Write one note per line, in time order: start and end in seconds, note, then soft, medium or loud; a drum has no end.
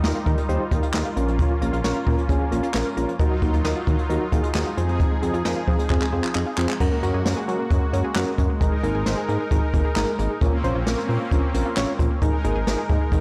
0.00 0.13 D#2 loud
0.00 1.15 G3 medium
0.00 1.15 D#4 medium
0.00 0.19 D#4 medium
0.00 3.16 F4 medium
0.00 0.19 G4 medium
0.00 0.19 A#4 loud
0.00 0.11 D#5 loud
0.00 snare loud
0.15 0.22 F4 medium
0.26 0.36 D#3 loud
0.26 0.33 A#3 medium
0.26 0.41 D#4 medium
0.26 0.41 G4 medium
0.26 0.41 A#4 medium
0.26 kick medium
0.26 closed hi-hat medium
0.38 0.45 G3 medium
0.38 closed hi-hat medium
0.49 0.58 D#2 loud
0.49 0.56 D#3 medium
0.49 0.64 D#4 loud
0.49 0.64 G4 loud
0.49 0.64 C5 loud
0.49 closed hi-hat medium
0.60 0.67 G3 medium
0.71 0.81 D#2 loud
0.71 0.78 A#3 medium
0.71 0.86 D#4 medium
0.71 0.86 G4 medium
0.71 0.86 A#4 medium
0.71 kick medium
0.71 closed hi-hat medium
0.83 0.90 F4 medium
0.83 closed hi-hat medium
0.94 1.03 D#2 medium
0.94 1.09 D#4 medium
0.94 1.09 G4 medium
0.94 1.09 A#4 medium
0.94 1.01 D#5 loud
0.94 snare loud
0.94 clap medium
1.05 1.12 F4 medium
1.17 1.44 A#1 loud
1.17 1.24 A#3 medium
1.17 3.18 A#3 medium
1.17 1.53 C#4 medium
1.17 3.18 C#4 medium
1.17 1.53 F4 medium
1.17 1.53 A#4 loud
1.17 closed hi-hat medium
1.28 1.35 F3 medium
1.28 closed hi-hat soft
1.39 1.46 C#3 loud
1.39 kick loud
1.39 closed hi-hat medium
1.50 1.57 F3 medium
1.62 1.71 A#1 loud
1.62 1.69 A#3 medium
1.62 1.76 C#4 medium
1.62 1.76 F4 medium
1.62 1.76 A#4 medium
1.62 closed hi-hat medium
1.73 1.82 A#1 loud
1.73 1.80 F4 medium
1.73 closed hi-hat medium
1.84 1.93 A#1 loud
1.84 1.99 C#4 medium
1.84 1.99 F4 medium
1.84 1.99 A#4 loud
1.84 1.91 C#5 medium
1.84 snare loud
1.96 2.02 F4 medium
2.07 2.16 A#2 loud
2.07 2.14 A#3 medium
2.07 2.22 C#4 medium
2.07 2.22 F4 medium
2.07 2.22 A#4 medium
2.07 kick loud
2.07 open hi-hat soft
2.18 2.25 F3 medium
2.18 closed hi-hat medium
2.29 2.38 A#1 loud
2.29 2.36 C#3 medium
2.29 2.44 C#4 loud
2.29 2.44 F4 loud
2.29 2.44 G#4 loud
2.29 kick loud
2.29 closed hi-hat medium
2.41 2.48 F3 medium
2.52 2.61 A#1 loud
2.52 2.59 A#3 medium
2.52 2.67 C#4 medium
2.52 2.67 F4 medium
2.52 2.67 A#4 loud
2.52 closed hi-hat medium
2.63 2.70 F4 medium
2.63 closed hi-hat medium
2.74 2.84 A#1 loud
2.74 2.89 C#4 medium
2.74 2.89 F4 medium
2.74 2.89 A#4 loud
2.74 2.81 C#5 loud
2.74 snare loud
2.74 clap medium
2.86 2.93 F4 medium
2.97 3.06 A#1 loud
2.97 3.04 A#3 medium
2.97 3.12 C#4 medium
2.97 3.12 F4 medium
2.97 3.12 A#4 loud
2.97 closed hi-hat medium
3.08 3.15 F3 medium
3.08 closed hi-hat soft
3.19 3.29 D#2 loud
3.19 3.27 D#3 medium
3.19 4.76 F#3 medium
3.19 3.34 D#4 loud
3.19 6.77 D#4 medium
3.19 4.76 F4 medium
3.19 3.34 F#4 loud
3.19 3.34 A#4 loud
3.19 kick loud
3.19 closed hi-hat medium
3.31 3.38 F#3 medium
3.42 3.51 D#2 loud
3.42 3.49 A#3 medium
3.42 3.57 D#4 medium
3.42 3.57 F#4 medium
3.42 3.57 A#4 medium
3.42 kick loud
3.42 closed hi-hat medium
3.53 3.63 D#2 loud
3.53 3.60 F4 medium
3.53 closed hi-hat medium
3.65 3.74 D#2 loud
3.65 3.79 D#4 medium
3.65 3.79 F#4 medium
3.65 3.79 A#4 medium
3.65 3.72 D#5 loud
3.65 snare loud
3.76 3.83 F4 medium
3.87 3.96 D#3 loud
3.87 3.94 A#3 medium
3.87 4.02 D#4 medium
3.87 4.02 F#4 medium
3.87 4.02 A#4 loud
3.87 kick medium
3.87 closed hi-hat medium
3.98 4.05 F#3 medium
3.98 closed hi-hat medium
4.10 4.19 D#2 loud
4.10 4.17 D#3 medium
4.10 4.24 D#4 loud
4.10 4.24 F#4 loud
4.10 4.24 A#4 loud
4.10 closed hi-hat medium
4.21 4.28 F#3 medium
4.32 4.42 D#2 loud
4.32 4.39 A#3 medium
4.32 4.47 D#4 medium
4.32 4.47 F#4 medium
4.32 4.47 G#4 loud
4.32 kick medium
4.32 closed hi-hat medium
4.44 4.51 F4 medium
4.44 closed hi-hat medium
4.55 4.64 D#2 loud
4.55 4.70 D#4 medium
4.55 4.70 F#4 medium
4.55 4.70 G#4 loud
4.55 4.62 D#5 medium
4.55 snare loud
4.55 clap medium
4.66 4.73 F4 medium
4.77 5.05 F2 medium
4.77 6.78 F3 medium
4.77 5.13 C4 medium
4.77 4.84 C4 medium
4.77 5.13 F4 medium
4.77 5.13 G#4 loud
4.77 6.78 G#4 medium
4.77 closed hi-hat medium
4.89 4.96 G#3 medium
4.89 closed hi-hat soft
5.00 5.07 D#3 medium
5.00 kick loud
5.00 closed hi-hat medium
5.11 5.18 G#3 medium
5.22 5.32 F2 loud
5.22 5.37 C4 medium
5.22 5.30 C4 medium
5.22 5.37 F4 medium
5.22 5.37 G#4 medium
5.22 closed hi-hat medium
5.34 5.43 F2 loud
5.34 5.41 F4 medium
5.34 closed hi-hat soft
5.45 5.54 F2 loud
5.45 5.60 C4 medium
5.45 5.60 F4 medium
5.45 5.60 A#4 loud
5.45 5.52 D#5 loud
5.45 snare loud
5.56 5.63 F4 medium
5.68 5.77 F3 loud
5.68 5.82 C4 medium
5.68 5.75 C4 medium
5.68 5.82 F4 medium
5.68 5.82 G#4 medium
5.68 kick loud
5.68 open hi-hat soft
5.79 5.86 G#3 medium
5.79 closed hi-hat medium
5.90 5.99 F2 loud
5.90 5.97 D#3 medium
5.90 6.05 C4 loud
5.90 6.05 F4 loud
5.90 6.05 G#4 loud
5.90 kick loud
5.90 clap medium
6.01 6.08 G#3 medium
6.01 clap medium
6.13 6.22 F2 loud
6.13 6.20 C4 medium
6.13 6.28 C4 medium
6.13 6.28 F4 medium
6.13 6.28 G#4 loud
6.24 6.31 F4 medium
6.24 clap medium
6.35 6.45 F2 loud
6.35 6.50 C4 medium
6.35 6.50 F4 medium
6.35 6.50 G#4 loud
6.35 6.42 D#5 loud
6.35 clap medium
6.46 6.53 F4 medium
6.58 6.67 F2 medium
6.58 6.65 C4 medium
6.58 6.73 C4 medium
6.58 6.73 F4 medium
6.58 6.73 G#4 loud
6.58 clap loud
6.69 6.76 G#3 medium
6.69 clap medium
6.80 6.90 F#2 loud
6.80 6.87 F#3 loud
6.80 10.38 G#3 medium
6.80 8.59 A#3 medium
6.80 6.95 C#4 loud
6.80 6.95 F#4 loud
6.80 8.59 F#4 medium
6.80 6.95 A#4 loud
6.80 kick loud
6.80 crash loud
6.92 6.99 A#3 medium
7.03 7.12 F#2 loud
7.03 7.18 C#4 loud
7.03 7.10 C#4 medium
7.03 7.18 F#4 loud
7.03 7.18 A#4 loud
7.03 closed hi-hat medium
7.14 7.23 F#2 loud
7.14 7.21 G#4 medium
7.25 7.35 F#2 loud
7.25 7.40 C#4 medium
7.25 7.40 F#4 medium
7.25 7.40 A#4 loud
7.25 snare loud
7.25 closed hi-hat medium
7.37 7.44 G#4 medium
7.48 7.57 F#3 loud
7.48 7.63 C#4 medium
7.48 7.55 C#4 medium
7.48 7.63 F#4 medium
7.48 7.63 A#4 medium
7.48 closed hi-hat medium
7.59 7.66 A#3 medium
7.71 7.80 F#2 loud
7.71 7.78 F#3 medium
7.71 7.85 C#4 medium
7.71 7.85 F#4 medium
7.71 7.85 A#4 medium
7.71 kick loud
7.71 closed hi-hat medium
7.93 8.02 F#2 loud
7.93 8.00 C#4 medium
7.93 8.08 C#4 medium
7.93 8.08 F#4 medium
7.93 8.08 A#4 medium
7.93 closed hi-hat medium
8.04 8.11 G#4 medium
8.16 8.25 F#2 loud
8.16 8.31 C#4 loud
8.16 8.31 F#4 loud
8.16 8.31 A#4 loud
8.16 8.23 F#5 medium
8.16 snare loud
8.16 clap medium
8.16 closed hi-hat medium
8.38 8.48 F#2 loud
8.38 8.45 C#4 medium
8.38 8.53 C#4 medium
8.38 8.53 F#4 medium
8.38 8.53 A#4 medium
8.38 kick loud
8.38 closed hi-hat medium
8.50 8.57 A#3 medium
8.61 8.70 G#1 loud
8.61 8.68 D#3 loud
8.61 8.76 D#4 loud
8.61 10.40 D#4 medium
8.61 8.76 G#4 loud
8.61 8.76 A#4 loud
8.61 10.40 A#4 medium
8.61 kick loud
8.61 closed hi-hat medium
8.72 8.79 G#3 medium
8.83 8.93 G#1 loud
8.83 8.90 A#3 medium
8.83 8.98 D#4 loud
8.83 8.98 G#4 medium
8.83 8.98 A#4 loud
8.83 closed hi-hat medium
8.95 9.04 G#1 loud
8.95 9.02 G#4 medium
9.06 9.15 G#1 loud
9.06 9.21 D#4 medium
9.06 9.21 G#4 medium
9.06 9.21 C5 loud
9.06 snare loud
9.06 closed hi-hat medium
9.17 9.24 G#4 medium
9.29 9.38 G#2 loud
9.29 9.36 A#3 medium
9.29 9.43 D#4 medium
9.29 9.43 G#4 medium
9.29 9.43 A#4 medium
9.29 closed hi-hat medium
9.40 9.47 G#3 medium
9.51 9.60 G#1 loud
9.51 9.58 D#3 medium
9.51 9.66 D#4 medium
9.51 9.66 G#4 medium
9.51 9.66 A#4 medium
9.51 kick loud
9.51 closed hi-hat medium
9.74 9.83 G#1 loud
9.74 9.81 A#3 medium
9.74 9.88 D#4 medium
9.74 9.88 G#4 medium
9.74 9.88 A#4 loud
9.74 kick medium
9.74 closed hi-hat medium
9.85 9.92 G#4 medium
9.96 10.05 G#1 loud
9.96 10.11 D#4 loud
9.96 10.11 G#4 loud
9.96 10.11 A#4 loud
9.96 10.03 D#5 loud
9.96 snare loud
9.96 clap medium
9.96 closed hi-hat medium
10.19 10.28 G#1 loud
10.19 10.26 A#3 medium
10.19 10.34 D#4 medium
10.19 10.34 G#4 medium
10.19 10.34 A#4 medium
10.19 closed hi-hat medium
10.30 10.37 G#3 medium
10.41 10.51 A#1 loud
10.41 10.48 C#3 loud
10.41 12.20 A#3 medium
10.41 12.20 C4 medium
10.41 10.56 C#4 loud
10.41 12.20 C#4 medium
10.41 10.56 F4 loud
10.41 10.56 A#4 loud
10.41 kick loud
10.41 closed hi-hat medium
10.53 10.60 A#3 medium
10.64 10.73 A#1 loud
10.64 10.71 C4 medium
10.64 10.79 C#4 loud
10.64 10.79 F4 loud
10.64 10.79 C5 loud
10.64 closed hi-hat medium
10.75 10.84 A#1 loud
10.75 10.82 F4 medium
10.86 10.96 A#1 loud
10.86 11.01 C#4 medium
10.86 11.01 F4 medium
10.86 11.01 A#4 loud
10.86 snare loud
10.86 closed hi-hat medium
10.98 11.05 F4 medium
11.09 11.18 A#2 loud
11.09 11.16 C4 medium
11.09 11.24 C#4 medium
11.09 11.24 F4 medium
11.09 11.24 A#4 medium
11.09 open hi-hat soft
11.20 11.27 A#3 medium
11.31 11.41 A#1 loud
11.31 11.39 C#3 medium
11.31 11.46 C#4 medium
11.31 11.46 F4 medium
11.31 11.46 A#4 loud
11.31 kick loud
11.31 closed hi-hat medium
11.54 11.63 A#1 loud
11.54 11.61 C4 medium
11.54 11.69 C#4 medium
11.54 11.69 F4 medium
11.54 11.69 A#4 loud
11.54 closed hi-hat medium
11.65 11.72 F4 medium
11.77 11.86 A#1 loud
11.77 11.92 C#4 loud
11.77 11.92 F4 loud
11.77 11.84 C#5 loud
11.77 11.92 C#5 loud
11.77 snare loud
11.77 clap medium
11.77 closed hi-hat medium
11.99 12.08 A#1 loud
11.99 12.06 C4 medium
11.99 12.14 C#4 medium
11.99 12.14 F4 medium
11.99 12.14 A#4 loud
11.99 kick medium
11.99 closed hi-hat medium
12.11 12.17 A#3 medium
12.22 12.31 G#1 loud
12.22 12.29 D#3 loud
12.22 13.21 G#3 medium
12.22 12.37 D#4 loud
12.22 13.21 D#4 medium
12.22 12.37 G#4 loud
12.22 12.37 A#4 loud
12.22 13.21 A#4 medium
12.22 kick loud
12.22 closed hi-hat medium
12.33 12.40 G#3 medium
12.44 12.54 G#1 loud
12.44 12.51 A#3 medium
12.44 12.59 D#4 loud
12.44 12.59 G#4 loud
12.44 12.59 A#4 loud
12.44 closed hi-hat medium
12.56 12.65 G#1 loud
12.56 12.63 G#4 medium
12.67 12.76 G#1 loud
12.67 12.82 D#4 medium
12.67 12.82 G#4 medium
12.67 12.82 A#4 loud
12.67 snare loud
12.67 closed hi-hat medium
12.78 12.85 G#4 medium
12.89 12.99 G#2 loud
12.89 12.96 A#3 medium
12.89 13.04 D#4 medium
12.89 13.04 G#4 medium
12.89 13.04 A#4 medium
12.89 kick loud
12.89 closed hi-hat medium
13.01 13.08 G#3 medium
13.12 13.21 G#1 loud
13.12 13.19 D#3 medium
13.12 13.21 D#4 medium
13.12 13.21 G#4 medium
13.12 13.21 A#4 loud
13.12 kick loud
13.12 closed hi-hat medium